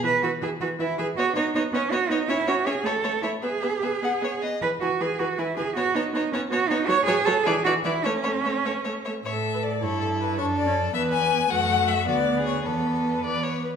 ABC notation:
X:1
M:6/8
L:1/16
Q:3/8=105
K:E
V:1 name="Violin"
e2 e2 e2 e2 e2 e2 | d2 d2 d2 d2 d2 d2 | e2 e2 e2 e2 e2 e2 | e2 e2 e2 d2 d2 d2 |
g2 g2 g2 g2 g2 g2 | a2 a2 a2 a2 a2 a2 | [K:A] a2 a2 a2 e2 e2 e2 | e2 e2 e2 e2 e2 e2 |
e4 d2 c2 A2 B2 | c2 d4 e2 g4 | f4 e2 d4 c2 | B8- B2 z2 |]
V:2 name="Violin"
B2 B2 B2 B2 B2 B2 | c2 c2 c2 c2 c2 c2 | c2 c2 c2 c2 c2 c2 | B2 B2 B2 f2 c2 d2 |
B2 B2 B2 B2 B2 B2 | c2 c2 c2 c2 c2 c2 | [K:A] c2 c2 c2 d2 d2 d2 | c2 c2 c2 c2 c2 c2 |
c3 B3 A6 | A6 B6 | F6 F3 G3 | A6 d2 c2 B2 |]
V:3 name="Cello"
B2 F2 G2 F2 E2 G2 | F2 D2 D2 C2 F2 D2 | E2 F2 G2 A4 E2 | G8- G2 z2 |
B2 F2 G2 F2 E2 G2 | F2 D2 D2 C2 F2 D2 | [K:A] c2 G2 A2 G2 F2 E2 | C8- C2 z2 |
A,,6 =G,,6 | F,,6 E,,6 | F,,6 D,,6 | E,,6 E,,4 z2 |]
V:4 name="Viola"
E,2 E,2 E,2 E,2 E,2 E,2 | B,2 B,2 B,2 B,2 B,2 B,2 | C2 C2 C2 A,2 A,2 A,2 | B,2 B,2 B,2 B,2 B,2 B,2 |
E,2 E,2 E,2 E,2 E,2 E,2 | B,2 B,2 B,2 B,2 B,2 B,2 | [K:A] F,2 F,2 F,2 E,2 E,2 E,2 | A,2 A,2 A,2 A,2 A,2 A,2 |
A6 E6 | D3 C3 B,6 | A,6 B,6 | B,6 B,4 z2 |]